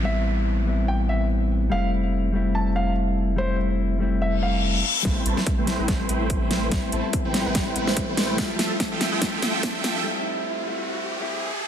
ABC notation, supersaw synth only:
X:1
M:4/4
L:1/16
Q:"Swing 16ths" 1/4=144
K:Am
V:1 name="Supersaw synth"
z16 | z16 | z16 | [A,EBcg]2 [A,EBca] z2 [A,EBcg]2 [A,EBcg]3 [A,EBcg]3 [A,EBcg]3 |
z2 [A,EBca] z2 [A,EBcg]2 [A,EBcg]3 [A,EBcg]3 [A,EBcg]3 | [F,FAeg]2 [F,FAea] z2 [F,FAeg]2 [F,FAeg]3 [F,FAeg]3 [F,FAeg]3 | z16 |]